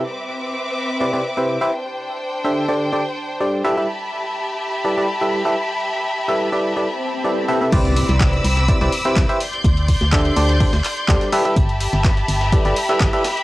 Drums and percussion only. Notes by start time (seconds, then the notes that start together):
7.72 kick, closed hi-hat, crash
7.85 closed hi-hat
7.96 closed hi-hat, open hi-hat
8.09 snare, closed hi-hat
8.20 kick, snare, clap, closed hi-hat
8.33 closed hi-hat
8.44 closed hi-hat, open hi-hat
8.57 snare, closed hi-hat
8.68 kick, closed hi-hat
8.81 snare, closed hi-hat
8.92 closed hi-hat, open hi-hat
9.05 snare, closed hi-hat
9.16 kick, snare, clap, closed hi-hat
9.29 closed hi-hat
9.40 closed hi-hat, open hi-hat
9.53 closed hi-hat
9.64 kick, closed hi-hat
9.77 closed hi-hat
9.88 kick, closed hi-hat, open hi-hat
10.01 snare, closed hi-hat
10.12 kick, snare, clap, closed hi-hat
10.25 closed hi-hat
10.36 closed hi-hat, open hi-hat
10.49 snare, closed hi-hat
10.60 kick, closed hi-hat, open hi-hat
10.73 snare, closed hi-hat
10.84 clap, closed hi-hat, open hi-hat
10.97 closed hi-hat
11.08 kick, snare, clap, closed hi-hat
11.21 snare, closed hi-hat
11.32 closed hi-hat, open hi-hat
11.45 closed hi-hat
11.56 kick, closed hi-hat
11.69 closed hi-hat
11.80 closed hi-hat, open hi-hat
11.93 snare, closed hi-hat
12.04 kick, snare, clap, closed hi-hat
12.17 closed hi-hat
12.28 closed hi-hat, open hi-hat
12.41 snare, closed hi-hat
12.52 kick, closed hi-hat
12.65 snare, closed hi-hat
12.76 closed hi-hat, open hi-hat
12.89 snare, closed hi-hat
13.00 kick, snare, clap, closed hi-hat
13.13 closed hi-hat
13.24 snare, closed hi-hat, open hi-hat
13.37 closed hi-hat